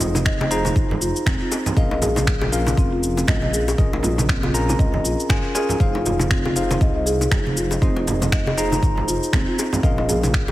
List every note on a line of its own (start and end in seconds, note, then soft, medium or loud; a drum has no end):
0.00 0.71 F1 loud
0.00 0.48 D#4 medium
0.00 0.48 F4 medium
0.00 0.48 G#4 medium
0.00 0.48 C5 medium
0.00 0.48 D#5 medium
0.00 low conga medium
0.00 shaker medium
0.15 0.21 C4 medium
0.15 low bongo medium
0.15 high conga medium
0.15 shaker medium
0.25 0.39 D#5 medium
0.25 finger snap loud
0.25 kick loud
0.25 shaker soft
0.40 0.50 D#5 medium
0.40 high bongo loud
0.40 high conga medium
0.51 1.74 D#4 medium
0.51 1.74 F4 medium
0.51 1.74 G#4 medium
0.51 0.64 G#4 medium
0.51 1.74 C5 medium
0.51 1.74 A#5 loud
0.51 shaker loud
0.65 low bongo medium
0.65 high conga medium
0.65 shaker medium
0.76 0.95 G#1 medium
0.76 kick loud
0.76 shaker soft
0.91 low conga loud
1.01 1.12 F1 medium
1.01 1.14 F4 medium
1.01 shaker loud
1.16 shaker medium
1.26 1.37 D#1 loud
1.26 1.40 C4 loud
1.26 finger snap loud
1.26 kick loud
1.26 low conga medium
1.26 shaker soft
1.41 1.51 F4 medium
1.52 high bongo medium
1.52 shaker loud
1.66 1.72 C4 medium
1.66 low conga loud
1.66 shaker medium
1.77 2.73 A#1 loud
1.77 2.50 C#4 medium
1.77 2.50 F4 medium
1.77 2.50 G#4 medium
1.77 2.50 A#4 medium
1.77 1.90 D#5 medium
1.77 2.50 F5 medium
1.77 kick loud
1.77 shaker soft
1.91 2.01 D#5 medium
1.91 low bongo medium
2.02 2.15 G#4 medium
2.02 low conga medium
2.02 shaker medium
2.16 low bongo loud
2.16 high conga loud
2.16 shaker medium
2.27 finger snap loud
2.27 kick loud
2.27 shaker soft
2.42 high bongo loud
2.42 high conga medium
2.52 3.76 C#4 medium
2.52 2.66 F4 medium
2.52 3.76 F4 medium
2.52 3.76 G#4 medium
2.52 3.76 A#4 medium
2.52 3.76 F5 medium
2.52 shaker loud
2.67 low bongo medium
2.67 high conga loud
2.67 shaker medium
2.77 3.23 F1 medium
2.77 2.91 C4 loud
2.77 kick loud
2.77 shaker soft
2.92 3.02 F4 medium
3.03 shaker loud
3.17 3.23 C4 medium
3.17 low bongo medium
3.17 shaker medium
3.27 3.74 A#1 medium
3.27 3.41 D#5 medium
3.27 finger snap loud
3.27 kick loud
3.27 low conga loud
3.27 shaker soft
3.42 3.53 D#5 medium
3.42 high conga loud
3.53 3.66 G#4 medium
3.53 shaker loud
3.68 high bongo medium
3.68 shaker medium
3.78 4.75 A#1 loud
3.78 4.52 C#4 medium
3.78 4.52 F4 medium
3.78 4.51 G#4 medium
3.78 4.51 A#4 medium
3.78 4.51 D#5 medium
3.78 kick loud
3.78 shaker soft
3.93 low bongo loud
4.03 4.17 F4 medium
4.03 low conga loud
4.03 shaker medium
4.18 low bongo medium
4.18 high conga loud
4.18 shaker medium
4.29 4.42 C4 medium
4.29 finger snap loud
4.29 kick loud
4.29 shaker soft
4.43 4.53 F4 medium
4.43 high bongo loud
4.43 high conga loud
4.54 5.28 C#4 medium
4.54 5.28 F4 medium
4.54 5.28 G#4 medium
4.54 5.28 A#4 medium
4.54 5.28 A#5 loud
4.54 shaker loud
4.69 4.74 C4 medium
4.69 low bongo loud
4.69 high conga medium
4.69 shaker medium
4.79 4.99 C#2 medium
4.79 4.92 D#5 medium
4.79 kick loud
4.79 shaker soft
4.94 5.04 D#5 medium
4.94 low conga loud
5.04 5.15 A#1 medium
5.04 5.18 F4 medium
5.04 shaker loud
5.20 shaker medium
5.29 5.40 G#1 loud
5.29 5.53 C#4 loud
5.29 5.52 F4 medium
5.29 5.52 G#4 medium
5.29 5.52 A#4 medium
5.29 5.53 G#5 loud
5.29 finger snap loud
5.29 kick loud
5.29 high conga medium
5.29 low conga medium
5.29 shaker soft
5.55 5.78 C#4 medium
5.55 5.78 F4 medium
5.55 5.78 G#4 medium
5.55 5.69 G#4 medium
5.55 5.78 A#4 medium
5.55 5.78 G#5 loud
5.55 high bongo medium
5.55 shaker medium
5.69 5.80 F4 medium
5.69 low conga loud
5.69 shaker medium
5.80 6.76 F1 loud
5.80 6.53 D#4 medium
5.80 6.53 F4 medium
5.80 6.53 G#4 medium
5.80 6.53 C5 medium
5.80 6.53 F5 medium
5.80 kick loud
5.80 shaker soft
5.95 low bongo loud
6.06 6.19 F4 medium
6.06 low conga medium
6.06 shaker medium
6.20 low bongo medium
6.20 high conga loud
6.20 shaker medium
6.31 6.44 C4 loud
6.31 finger snap loud
6.31 kick loud
6.31 shaker soft
6.45 6.55 F4 medium
6.45 high bongo medium
6.45 high conga medium
6.56 7.79 D#4 medium
6.56 7.79 F4 medium
6.56 7.79 G#4 medium
6.56 7.79 C5 medium
6.56 7.79 F5 medium
6.56 shaker medium
6.71 6.76 C4 medium
6.71 low bongo loud
6.71 high conga medium
6.71 shaker soft
6.81 7.27 C2 medium
6.81 6.94 D#5 medium
6.81 kick loud
6.81 shaker soft
6.96 7.06 D#5 medium
7.06 7.19 G#4 medium
7.06 shaker medium
7.21 low bongo medium
7.21 shaker medium
7.31 7.77 F1 medium
7.31 finger snap loud
7.31 kick loud
7.31 low conga loud
7.31 shaker soft
7.47 high conga loud
7.57 7.70 F4 medium
7.57 shaker medium
7.71 high bongo medium
7.71 shaker medium
7.82 8.78 F1 loud
7.82 7.95 C4 loud
7.82 8.55 D#4 medium
7.82 8.55 F4 medium
7.82 8.55 G#4 medium
7.82 8.55 C5 medium
7.82 8.55 D#5 medium
7.82 kick loud
7.82 shaker soft
7.96 8.06 F4 medium
7.96 low bongo medium
8.07 low conga medium
8.07 shaker medium
8.22 8.28 C4 medium
8.22 low bongo medium
8.22 high conga medium
8.22 shaker medium
8.32 8.46 D#5 medium
8.32 finger snap loud
8.32 kick loud
8.32 shaker soft
8.47 8.57 D#5 medium
8.47 high bongo loud
8.47 high conga medium
8.58 9.81 D#4 medium
8.58 9.81 F4 medium
8.58 9.81 G#4 medium
8.58 8.71 G#4 medium
8.58 9.81 C5 medium
8.58 9.81 A#5 loud
8.58 shaker medium
8.72 low bongo medium
8.72 high conga medium
8.72 shaker soft
8.83 9.02 G#1 medium
8.83 kick loud
8.83 shaker soft
8.97 low conga medium
9.08 9.19 F1 medium
9.08 9.21 F4 medium
9.08 shaker medium
9.23 shaker soft
9.33 9.44 D#1 loud
9.33 9.46 C4 loud
9.33 finger snap loud
9.33 kick loud
9.33 low conga medium
9.33 shaker soft
9.48 9.57 F4 medium
9.59 high bongo medium
9.59 shaker medium
9.73 9.79 C4 medium
9.73 low conga loud
9.73 shaker medium
9.83 10.52 A#1 loud
9.83 10.52 C#4 medium
9.83 10.52 F4 medium
9.83 10.52 G#4 medium
9.83 10.52 A#4 medium
9.83 9.97 D#5 medium
9.83 10.52 F5 medium
9.83 kick loud
9.83 shaker soft
9.98 10.08 D#5 medium
9.98 low bongo medium
10.09 10.22 G#4 medium
10.09 low conga medium
10.09 shaker medium
10.23 low bongo medium
10.23 high conga medium
10.23 shaker soft
10.34 finger snap loud
10.34 kick loud
10.34 shaker soft
10.48 high bongo loud